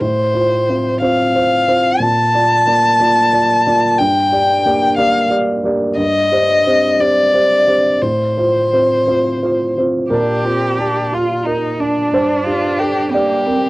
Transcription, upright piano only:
0.01 A2
0.34 F4 C5
0.68 C4 F4 C5
1.01 C4 F4 C5
1.35 F4 C5
1.68 C4 F4 C5
2.00 A#2
2.34 F4 D5
2.67 A#3 F4 D5
3.00 A#3 F4 D5
3.33 F4 D5
3.67 A#3 F4 D5
4.00 G2
4.32 G4 D5
4.65 A#3 G4 D5
4.98 A#3 G4 D5
5.30 G4 D5
5.64 A#3 G4 D5
5.97 G2
6.32 G4 C5
6.66 C4 G4 C5
7.00 C4 G4 C5
7.34 G4 C5
7.67 C4 G4 C5
8.02 A2
8.37 F4 C5
8.73 C4 F4 C5
9.06 C4 F4 C5
9.43 F4 C5
9.77 C4 F4 C5
10.10 A#2 A#4
10.45 F4
10.78 G4
11.12 F4
11.47 A#4
11.80 D4
12.13 G2 C5
12.46 G4
12.81 A4
13.14 G4 D5
13.47 A#4

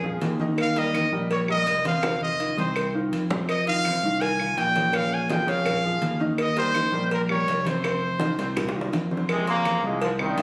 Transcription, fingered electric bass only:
Already playing: F2
0.22 D#2
1.12 A#1
1.66 F1
2.57 C2
3.12 F2
4.03 C2
4.57 A#1
5.47 F2
6.01 D#2
6.92 A#1
7.47 F1
8.38 C2
8.92 F2
9.83 C2
10.37 A#1

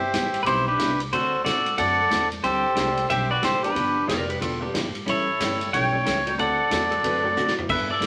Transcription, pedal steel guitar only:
Already playing: G4 E5
0.43 B4
0.47 E4 C5
0.68 D4 B4
1.13 F#4 C5
1.45 F#4 D5
1.78 A4 F#5
2.44 G4 C5
3.10 G4 E5
3.31 F#4 D5
3.44 G4 C5
3.65 D4 B4
5.09 E4 C#5
5.73 C#5 G5
6.40 A4 F#5
7.70 E5
7.91 D5

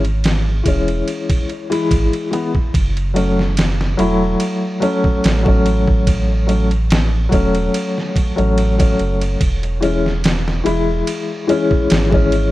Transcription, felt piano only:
0.64 E3 G#3
0.68 C#4
1.70 E3 G#3 E4
2.31 E3 G#3 B3
3.14 F#3 A3 C#4
3.97 F#3 A3 E4
4.80 F#3 A3 C#4
5.43 F#3 A3
5.48 C#4
6.47 F#3 A3 C#4
7.29 F#3 A3
7.33 C#4
8.36 F#3 A3 C#4
8.78 F#3 A3 C#4
9.81 E3 G#3 C#4
10.64 E3 G#3 E4
11.47 E3 G#3 C#4
12.10 E3 G#3
12.14 C#4

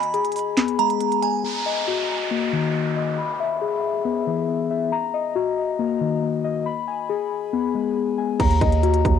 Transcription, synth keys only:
Already playing: G#5 B5
0.14 G#4
0.57 B3
0.79 G#3
1.22 G#5
1.66 D#5
1.87 F#4
2.31 A#3
2.53 D#3
2.96 D#5
3.18 B5
3.40 E5
3.61 G#4
4.05 B3
4.27 E3
4.70 E5
4.92 A#5
5.14 D#5
5.35 F#4
5.79 A#3
6.01 D#3
6.44 D#5
6.66 B5
6.88 G#5
7.09 G#4
7.53 B3
7.75 G#3
8.18 G#5
8.40 A#5
8.61 D#5
8.83 F#4

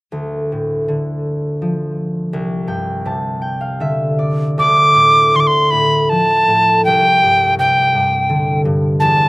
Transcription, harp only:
0.12 D2
0.52 A2
0.88 D3
1.62 F3
2.33 C2
2.67 G2 G5
3.05 C3 A5
3.42 G5
3.61 F5
3.80 D3 E5
4.19 D5
4.58 D2
4.95 A2
5.34 D3
5.72 A2
6.11 F3
6.47 A2
6.87 C2
7.23 G2
7.59 C3
7.95 G2
8.29 D3
8.65 G2
9.01 E2

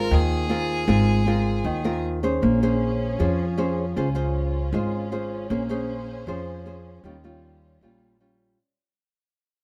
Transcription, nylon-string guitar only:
Already playing: C4 F4 A#4
0.11 D#3
0.49 C4 F4 A#4
0.88 G#3 C4 F4 A#4
1.27 C4 F4 A#4
1.65 D#3
1.84 C4 F4 A#4
2.23 C#4 G#4 C5
2.42 A#3
2.63 C#4 G#4 C5
3.19 F3 C#4 G#4 C5
3.58 C#4 G#4 C5
3.96 C#4 F4 G#4 C5
4.15 F4 G#4 C5
4.73 G#3 F4 G#4 C5
5.12 F4 G#4 C5
5.50 A#3 C#4 G#4 C5
5.69 C#4 G#4 C5
6.27 F3 C#4 G#4 C5
6.66 C#4 G#4 C5
7.04 D#3 G3 C#4 F4
7.24 G3 C#4 F4
7.82 A#2 G3 C#4 F4
8.20 G3 C#4 F4

